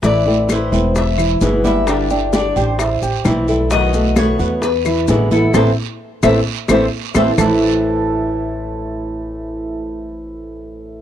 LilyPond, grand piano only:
\new Staff \with { instrumentName = "Grand piano" } { \time 4/4 \key a \minor \tempo 4 = 130 <e e'>8 <a a'>4 <b b'>4 <e e'>8 <gis gis'>8 <g g'>8~ | <g g'>8 <d' d''>4 <g' g''>8 <e' e''>8 <g' g''>4 <a a'>8 | <fis fis'>8 <a a'>4 <b b'>4 <e e'>8 <gis gis'>8 <e e'>8 | <c' e' a'>8 r4 <c' e' a'>8 r8 <c' e' a'>8 r8 <c' e' a'>8 |
<a e' a' c'' e'' a''>1~ | <a e' a' c'' e'' a''>1 | }